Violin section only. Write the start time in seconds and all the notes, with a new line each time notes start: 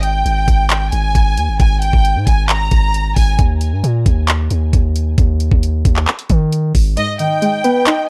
0.03 G5
0.92 G#5
1.60 G#5
1.82 G5
2.27 G#5
2.49 A#5
3.17 G#5
6.97 D#5
7.20 G5